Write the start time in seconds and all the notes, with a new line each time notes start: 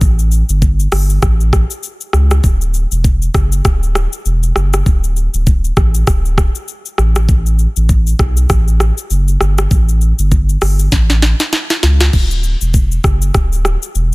0.01 A1, kick, shaker
0.19 shaker
0.31 shaker
0.49 G1, shaker
0.62 kick, shaker
0.80 shaker
0.92 G1, cross-stick, open hi-hat, shaker
1.10 shaker
1.22 A1, kick, cross-stick, shaker
1.41 shaker
1.53 kick, cross-stick, shaker
1.70 shaker
1.83 shaker
2.01 shaker
2.13 C#2, cross-stick, shaker
2.31 cross-stick, shaker
2.44 D1, kick, shaker
2.61 shaker
2.74 shaker
2.92 E1, shaker
3.04 kick, shaker
3.22 shaker
3.34 F#1, kick, cross-stick, shaker
3.52 shaker
3.65 D1, kick, cross-stick, shaker
3.83 shaker
3.95 cross-stick, shaker
4.13 shaker
4.25 E1, shaker
4.43 shaker
4.56 F#1, cross-stick, shaker
4.73 cross-stick, shaker
4.86 D1, kick, shaker
5.04 shaker
5.16 shaker
5.34 D1, shaker
5.47 kick, shaker
5.64 shaker
5.77 A1, kick, cross-stick, shaker
5.95 shaker
6.07 D1, kick, cross-stick, shaker
6.25 shaker
6.38 kick, cross-stick, shaker
6.55 shaker
6.68 shaker
6.86 shaker
6.98 A1, cross-stick, shaker
7.16 cross-stick, shaker
7.29 kick, shaker
7.46 shaker
7.59 shaker
7.76 A1, shaker
7.89 kick, shaker
8.07 shaker
8.19 B1, kick, cross-stick, shaker
8.37 shaker
8.49 A1, kick, cross-stick, shaker
8.68 shaker
8.80 cross-stick, shaker
8.98 shaker
9.10 F#1, shaker
9.28 shaker
9.41 G1, cross-stick, shaker
9.58 cross-stick, shaker
9.71 A1, kick, shaker
9.89 shaker
10.01 shaker
10.19 G1, shaker
10.31 kick, shaker
10.49 shaker
10.61 G1, cross-stick, open hi-hat, shaker
10.79 shaker
10.92 A1, kick, snare, shaker
11.10 snare, shaker
11.22 snare, shaker
11.40 snare, shaker
11.53 snare, shaker
11.70 snare, shaker
11.83 C#2, snare, shaker
12.00 snare, shaker
12.13 D1, kick, crash, shaker
12.31 shaker
12.43 shaker
12.61 E1, shaker
12.74 kick, shaker
12.92 shaker
13.04 F#1, kick, cross-stick, shaker
13.22 shaker
13.34 D1, kick, cross-stick, shaker
13.53 shaker
13.65 cross-stick, shaker
13.82 shaker
13.95 E1, shaker